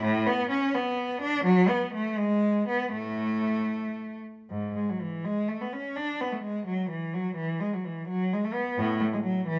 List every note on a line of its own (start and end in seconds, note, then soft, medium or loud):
0.02 0.26 A2 loud
0.26 0.51 B3 medium
0.50 0.74 C#4 medium
0.75 1.22 B3 medium
1.21 1.45 D4 medium
1.44 1.69 F#3 loud
1.69 1.93 B3 medium
1.94 2.18 A3 medium
2.18 2.68 G#3 medium
2.68 2.93 B3 medium
2.92 3.65 A2 medium
2.92 4.20 A3 medium
4.50 4.75 G#2 medium
4.75 4.88 G#3 medium
4.89 5.01 F#3 medium
5.01 5.25 E3 medium
5.25 5.49 G#3 medium
5.48 5.61 A3 medium
5.61 5.73 B3 medium
5.72 5.97 C#4 medium
5.96 6.20 D4 medium
6.21 6.32 B3 medium
6.32 6.44 A3 soft
6.43 6.66 G#3 medium
6.66 6.90 F#3 medium
6.90 7.13 E3 medium
7.14 7.38 F#3 medium
7.36 7.60 E3 medium
7.60 7.73 G#3 medium
7.73 7.85 F#3 medium
7.84 8.08 E3 medium
8.08 8.31 F#3 medium
8.33 8.44 G#3 medium
8.45 8.55 A3 medium
8.54 8.77 B3 medium
8.78 9.01 A2 medium
9.00 9.05 A3 medium
9.13 9.18 G#3 medium
9.23 9.46 F#3 medium
9.47 9.59 E3 medium